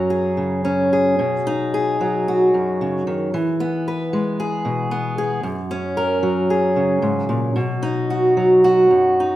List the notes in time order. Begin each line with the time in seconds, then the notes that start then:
Already playing: F#2 F#3 C#4 A#4
0.10 G#4
0.37 C#3
0.65 C#4
0.93 G#4
1.19 B2
1.47 D#4
1.74 G#4
2.01 F#3
2.28 F#4
2.54 F#2
2.81 C#3
3.07 D#3
3.34 E3
3.60 B3
3.88 B4
4.13 G#3
4.40 G#4
4.65 B2
4.91 B3
5.18 G#4
5.43 F#2
5.71 C#4
5.97 A#4
6.23 F#3
6.50 G#4
6.76 C#3
7.02 G#2
7.29 A#2
7.56 B2
7.83 D#4
8.10 F#4
8.37 F#3
8.64 F#4
8.91 F#2
9.20 D#4